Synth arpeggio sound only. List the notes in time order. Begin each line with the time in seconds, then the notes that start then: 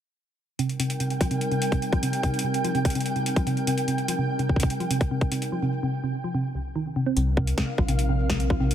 0.59 C3
0.80 C3
1.00 C3
1.21 F3
1.31 C3
1.52 C3
1.72 C3
1.93 F3
2.03 C3
2.24 C3
2.44 C3
2.65 F3
2.75 C3
2.95 C3
3.16 C3
3.37 F3
3.47 C3
3.67 C3
3.88 C3
4.08 F3
4.19 C3
4.39 C3
4.60 C3
4.80 F3
4.91 C3
5.11 C3
5.32 C3
5.52 F3
5.63 C3
5.83 C3
6.04 C3
6.24 F3
6.35 C3
6.55 C2
6.76 D#3
6.96 C3
7.06 C4
7.17 C3
7.37 C3
7.58 C3
7.78 F3
7.89 C3
8.09 C3
8.30 C3
8.50 F3
8.60 C3